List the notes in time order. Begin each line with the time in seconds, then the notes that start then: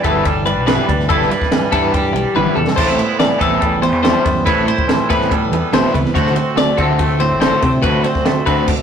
Already playing: G2 E3 G3 E4
0.04 G1 G3 B3 E4 A4 B4, kick, ride
0.16 D4
0.25 G3, muted overdriven electric guitar stroke, kick, ride
0.45 G2 D4 B4, muted overdriven electric guitar stroke, ride
0.58 B1
0.67 G3 B3 E4 B4, snare, ride
0.78 snare
0.87 D2 D4, muted overdriven electric guitar stroke, kick, ride
1.00 snare
1.09 G1 G2 G3 B3 E4 A4 B4, kick, ride
1.22 snare
1.30 D4 B4, muted overdriven electric guitar stroke, ride
1.42 kick, snare
1.51 E3 G3, muted overdriven electric guitar stroke, snare, ride
1.72 G2 G3 B3 D4 E4 A4 B4, kick, ride
1.93 G3 G4, muted overdriven electric guitar stroke, kick, ride
2.13 B1 G2 D4, muted overdriven electric guitar stroke, ride
2.35 G1 G3 B3 E4 B4, high tom
2.46 mid tom
2.56 E2 D4 A4, muted overdriven electric guitar stroke, mid tom
2.67 snare
2.76 A1 A2 A3 C4 D4 E4 A4 C5, kick, crash
2.87 E4, snare
2.98 B3, muted overdriven electric guitar stroke, ride
3.18 E3 G3 D5, muted overdriven electric guitar stroke, snare, ride
3.39 A1 A3 B3 C4 E4 A4, kick, ride
3.61 G3, muted overdriven electric guitar stroke, kick, ride
3.82 E2 B3 C5, muted overdriven electric guitar stroke, ride
3.92 E2
4.03 G3 A3 C4 E4 A4 C5, snare, ride
4.24 F#2 B3, muted overdriven electric guitar stroke, kick, ride
4.45 A1 A2 A3 C4 E4 A4 B4, kick, ride
4.68 C5, muted overdriven electric guitar stroke, ride
4.78 kick
4.87 E3 G3, muted overdriven electric guitar stroke, snare, ride
5.09 A2 A3 B3 C4 E4 A4 B4, kick, ride
5.21 snare
5.30 G3 A4, muted overdriven electric guitar stroke, kick, ride
5.51 E2 B3, muted overdriven electric guitar stroke, ride
5.72 A1 B2 A3 C4 E4 A4 C5, snare, ride
5.84 snare
5.93 C#2 C3 B4, muted overdriven electric guitar stroke, kick, ride
6.05 snare
6.14 D2 A3 C4 F#4 A4 C5, kick, ride
6.26 snare
6.35 C4, muted overdriven electric guitar stroke, ride
6.56 D3 A3 D5, muted overdriven electric guitar stroke, snare, ride
6.78 D2 A3 C4 F#4 A4, kick, ride
6.99 A3, muted overdriven electric guitar stroke, kick, ride
7.20 A2 C4 C5, muted overdriven electric guitar stroke, ride
7.32 A1
7.41 A3 C4 F#4 A4 C5, snare, ride
7.62 C3 C4, muted overdriven electric guitar stroke, kick, ride
7.83 D2 A3 C4 F#4 A4 B4, kick, ride
8.04 C4 C5, muted overdriven electric guitar stroke, ride
8.15 kick, snare
8.25 D3 A3, muted overdriven electric guitar stroke, snare, ride
8.46 D3 A3 C4 F#4 A4 B4, kick, ride
8.68 kick, crash